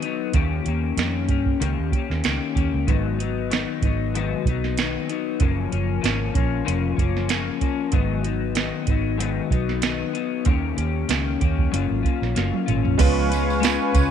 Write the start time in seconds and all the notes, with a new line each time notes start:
0.02 F#3 B3 D#4, closed hi-hat
0.33 D#2 D#3 A#3 C#4 G4, kick, closed hi-hat
0.64 D#2 A#3 C#4 G4, closed hi-hat
0.97 F2 D#3 A#3 C#4, snare, closed hi-hat
1.01 G4
1.28 G2 A#3 C#4 G4, kick, closed hi-hat
1.46 kick
1.60 C#2 D#3 A#3 C#4 G4, closed hi-hat
1.79 D#2
1.92 A#3 C#4 G4, kick, closed hi-hat
2.10 D#2, snare
2.24 C#2 D#3 A#3 C#4 G4, snare, closed hi-hat
2.55 D#2 A#3 C#4 G4, kick, closed hi-hat
2.74 C#2
2.87 G#1 G#2 D#3 F#3 B3 D#4, kick, closed hi-hat
3.19 F#3 B3 D#4, closed hi-hat
3.51 D#3 F#3 B3 D#4, snare, closed hi-hat
3.82 G#1 B3 D#4, kick, closed hi-hat
3.87 F#3
4.14 G#2 D#3 F#3 B3 D#4, closed hi-hat
4.45 B1 B3 D#4, kick, closed hi-hat
4.50 F#3
4.64 snare
4.78 D#3 F#3 B3, snare, closed hi-hat
4.82 D#4
5.09 F#3 B3 D#4, closed hi-hat
5.40 F#1 F#2 C#3 F3 A#3 C#4, kick, closed hi-hat
5.72 F#1 F3 A#3 C#4, closed hi-hat
6.01 G#1 C#3 F3 A#3 C#4, snare, closed hi-hat
6.34 A#1 F3 A#3 C#4, kick, closed hi-hat
6.65 F1 C#3 F3 A#3 C#4, closed hi-hat
6.97 F#1 F3 A#3 C#4, kick, closed hi-hat
7.17 snare
7.29 C#3 F3 A#3 C#4, snare, closed hi-hat
7.61 F3 A#3 C#4, kick, closed hi-hat
7.92 G#1 G#2 D#3 F#3 B3 D#4, kick, closed hi-hat
8.23 F#3 B3 D#4, closed hi-hat
8.55 D#3 F#3 B3, snare, closed hi-hat
8.59 D#4
8.87 G#1 B3 D#4, kick, closed hi-hat
8.91 F#3
9.18 G#2 D#3 F#3 B3 D#4, closed hi-hat
9.50 B1 F#3 B3 D#4, kick, closed hi-hat
9.69 snare
9.82 D#3 F#3 B3 D#4, snare, closed hi-hat
10.13 F#3 B3 D#4, closed hi-hat
10.45 D#2 D#3 A#3 C#4 G4, kick, closed hi-hat
10.77 D#2 A#3 C#4 G4, closed hi-hat
11.09 C#2 D#3 A#3 C#4 G4, snare, closed hi-hat
11.41 D#2 A#3 C#4 G4, kick, closed hi-hat
11.58 kick
11.71 F#1 F#3 A#3 C#4 F4, closed hi-hat
11.91 G#1
12.03 A#3 C#4 F4, kick, closed hi-hat
12.22 A#1, snare
12.35 F#1 F#3 A#3 C#4 F4, snare, closed hi-hat
12.54 high tom
12.66 G#1 C#4 F4, closed hi-hat, mid tom
12.70 A#3
12.85 A#1, floor tom
12.98 C#2 C#3 F3 G#3 B3 C#4 F4 B4 F5 G#5 C#6, kick, closed hi-hat, crash, tambourine
13.29 G#3 C#4 F4 B4, closed hi-hat, tambourine
13.50 tambourine
13.60 G#3 C#4 F4 B4, closed hi-hat, tambourine
13.65 snare
13.93 C#2 G#3 C#4 F4 B4, kick, closed hi-hat, tambourine